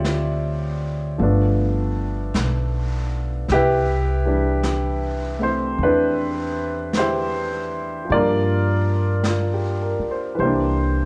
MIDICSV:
0, 0, Header, 1, 5, 480
1, 0, Start_track
1, 0, Key_signature, 0, "major"
1, 0, Tempo, 1149425
1, 1457, Time_signature, 4, 2, 24, 8
1, 4615, End_track
2, 0, Start_track
2, 0, Title_t, "Grand piano"
2, 0, Program_c, 0, 0
2, 0, Control_c, 0, 64, 127
2, 0, Note_on_c, 0, 53, 38
2, 0, Note_on_c, 0, 55, 36
2, 0, Note_on_c, 0, 60, 36
2, 0, Note_on_c, 0, 65, 46
2, 0, Note_on_c, 0, 67, 43
2, 0, Note_on_c, 0, 72, 52
2, 0, Note_on_c, 0, 73, 48
2, 0, Note_on_c, 0, 74, 60
2, 0, Note_on_c, 0, 76, 43
2, 487, Note_off_c, 0, 53, 0
2, 490, Note_off_c, 0, 74, 0
2, 491, Note_off_c, 0, 72, 0
2, 493, Note_off_c, 0, 65, 0
2, 493, Note_off_c, 0, 67, 0
2, 493, Note_on_c, 0, 53, 46
2, 498, Note_off_c, 0, 55, 0
2, 499, Note_on_c, 0, 57, 41
2, 505, Control_c, 0, 64, 0
2, 506, Note_off_c, 0, 60, 0
2, 507, Note_on_c, 0, 59, 39
2, 509, Note_off_c, 0, 73, 0
2, 512, Note_on_c, 0, 62, 50
2, 513, Note_off_c, 0, 76, 0
2, 580, Control_c, 0, 64, 127
2, 1455, Note_off_c, 0, 53, 0
2, 1457, Note_off_c, 0, 57, 0
2, 1461, Note_off_c, 0, 59, 0
2, 1463, Control_c, 0, 64, 0
2, 1464, Note_off_c, 0, 62, 0
2, 1469, Note_on_c, 0, 67, 92
2, 1478, Note_on_c, 0, 64, 68
2, 1478, Note_on_c, 0, 71, 68
2, 1525, Control_c, 0, 64, 127
2, 1777, Note_on_c, 0, 52, 42
2, 1779, Note_on_c, 0, 55, 41
2, 1784, Note_on_c, 0, 62, 44
2, 1926, Note_off_c, 0, 67, 0
2, 2251, Note_on_c, 0, 57, 37
2, 2257, Note_on_c, 0, 60, 33
2, 2258, Note_off_c, 0, 64, 0
2, 2264, Note_on_c, 0, 64, 37
2, 2268, Note_on_c, 0, 72, 69
2, 2409, Note_off_c, 0, 71, 0
2, 2428, Note_off_c, 0, 72, 0
2, 2430, Note_off_c, 0, 64, 0
2, 2431, Note_off_c, 0, 62, 0
2, 2435, Note_on_c, 0, 71, 72
2, 2436, Note_on_c, 0, 64, 49
2, 2437, Note_on_c, 0, 62, 55
2, 2912, Note_on_c, 0, 72, 74
2, 2914, Note_off_c, 0, 64, 0
2, 2918, Note_on_c, 0, 67, 56
2, 2919, Note_off_c, 0, 71, 0
2, 2920, Note_on_c, 0, 64, 56
2, 3362, Note_on_c, 0, 53, 37
2, 3369, Note_off_c, 0, 62, 0
2, 3370, Note_off_c, 0, 67, 0
2, 3371, Note_off_c, 0, 64, 0
2, 3372, Note_off_c, 0, 55, 0
2, 3374, Note_off_c, 0, 57, 0
2, 3376, Note_off_c, 0, 52, 0
2, 3377, Note_off_c, 0, 60, 0
2, 3378, Note_on_c, 0, 55, 34
2, 3381, Control_c, 0, 64, 0
2, 3391, Note_on_c, 0, 74, 87
2, 3392, Note_on_c, 0, 58, 34
2, 3394, Note_on_c, 0, 70, 69
2, 3397, Note_on_c, 0, 65, 66
2, 3398, Note_off_c, 0, 72, 0
2, 3407, Note_on_c, 0, 62, 41
2, 3442, Control_c, 0, 64, 127
2, 3856, Note_off_c, 0, 65, 0
2, 3863, Note_on_c, 0, 65, 39
2, 3983, Note_on_c, 0, 67, 42
2, 4080, Note_off_c, 0, 65, 0
2, 4095, Note_off_c, 0, 70, 0
2, 4101, Note_on_c, 0, 70, 40
2, 4182, Note_off_c, 0, 67, 0
2, 4222, Note_on_c, 0, 72, 43
2, 4247, Note_off_c, 0, 70, 0
2, 4321, Note_on_c, 0, 52, 45
2, 4321, Note_on_c, 0, 71, 47
2, 4327, Note_off_c, 0, 53, 0
2, 4328, Note_off_c, 0, 55, 0
2, 4334, Note_on_c, 0, 55, 40
2, 4336, Note_off_c, 0, 72, 0
2, 4337, Note_off_c, 0, 71, 0
2, 4340, Control_c, 0, 64, 0
2, 4342, Note_on_c, 0, 72, 67
2, 4343, Note_off_c, 0, 58, 0
2, 4348, Note_on_c, 0, 64, 48
2, 4350, Note_off_c, 0, 62, 0
2, 4350, Note_off_c, 0, 74, 0
2, 4351, Note_on_c, 0, 67, 47
2, 4352, Note_on_c, 0, 58, 40
2, 4364, Note_on_c, 0, 62, 49
2, 4418, Control_c, 0, 64, 127
2, 4615, Note_off_c, 0, 52, 0
2, 4615, Note_off_c, 0, 55, 0
2, 4615, Note_off_c, 0, 58, 0
2, 4615, Note_off_c, 0, 62, 0
2, 4615, Note_off_c, 0, 64, 0
2, 4615, Note_off_c, 0, 67, 0
2, 4615, Note_off_c, 0, 72, 0
2, 4615, End_track
3, 0, Start_track
3, 0, Title_t, "Upright bass"
3, 0, Program_c, 1, 32
3, 0, Note_on_c, 1, 38, 69
3, 484, Note_off_c, 1, 38, 0
3, 498, Note_on_c, 1, 31, 67
3, 961, Note_off_c, 1, 31, 0
3, 978, Note_on_c, 1, 35, 59
3, 1441, Note_off_c, 1, 35, 0
3, 1459, Note_on_c, 1, 36, 72
3, 2400, Note_off_c, 1, 36, 0
3, 2415, Note_on_c, 1, 40, 68
3, 3358, Note_off_c, 1, 40, 0
3, 3382, Note_on_c, 1, 43, 72
3, 4158, Note_off_c, 1, 43, 0
3, 4338, Note_on_c, 1, 36, 69
3, 4615, Note_off_c, 1, 36, 0
3, 4615, End_track
4, 0, Start_track
4, 0, Title_t, "Muted upright bass strokes"
4, 4174, Note_on_c, 9, 29, 33
4, 4215, Note_off_c, 9, 29, 0
4, 4615, End_track
5, 0, Start_track
5, 0, Title_t, "Drums"
5, 18, Note_on_c, 9, 25, 32
5, 18, Note_on_c, 9, 38, 40
5, 18, Note_on_c, 9, 44, 42
5, 60, Note_off_c, 9, 38, 0
5, 60, Note_off_c, 9, 44, 0
5, 499, Note_off_c, 9, 25, 0
5, 499, Note_on_c, 9, 25, 28
5, 978, Note_off_c, 9, 25, 0
5, 978, Note_on_c, 9, 25, 35
5, 978, Note_on_c, 9, 38, 37
5, 978, Note_on_c, 9, 44, 46
5, 1020, Note_off_c, 9, 38, 0
5, 1020, Note_off_c, 9, 44, 0
5, 1455, Note_off_c, 9, 25, 0
5, 1455, Note_on_c, 9, 25, 28
5, 1455, Note_on_c, 9, 38, 23
5, 1497, Note_off_c, 9, 38, 0
5, 1935, Note_off_c, 9, 25, 0
5, 1935, Note_on_c, 9, 25, 30
5, 1935, Note_on_c, 9, 38, 37
5, 1935, Note_on_c, 9, 44, 46
5, 1976, Note_off_c, 9, 38, 0
5, 1976, Note_off_c, 9, 44, 0
5, 2414, Note_off_c, 9, 25, 0
5, 2414, Note_on_c, 9, 25, 31
5, 2895, Note_off_c, 9, 25, 0
5, 2895, Note_on_c, 9, 25, 30
5, 2895, Note_on_c, 9, 38, 39
5, 2895, Note_on_c, 9, 44, 45
5, 2937, Note_off_c, 9, 38, 0
5, 2937, Note_off_c, 9, 44, 0
5, 3375, Note_off_c, 9, 25, 0
5, 3375, Note_on_c, 9, 25, 27
5, 3857, Note_off_c, 9, 25, 0
5, 3857, Note_on_c, 9, 25, 32
5, 3857, Note_on_c, 9, 38, 39
5, 3857, Note_on_c, 9, 44, 42
5, 3899, Note_off_c, 9, 38, 0
5, 3899, Note_off_c, 9, 44, 0
5, 4336, Note_off_c, 9, 25, 0
5, 4336, Note_on_c, 9, 25, 32
5, 4615, Note_off_c, 9, 25, 0
5, 4615, End_track
0, 0, End_of_file